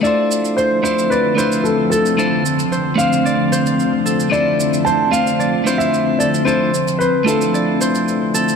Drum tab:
SH |x-xxx-xxx-xxx-xx|x-xxx-xxx-xxx-xx|x-xxx-xxx-xxx-xx|x-xxx-xxx-xxx-xx|